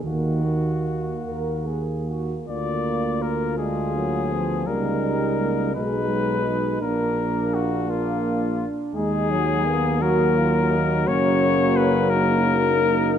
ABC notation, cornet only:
X:1
M:6/8
L:1/16
Q:3/8=56
K:Ebm
V:1 name="Cornet"
G8- G z3 | =d4 B2 A6 | B6 c6 | B4 G2 F4 z2 |
A6 B6 | d4 c2 B6 |]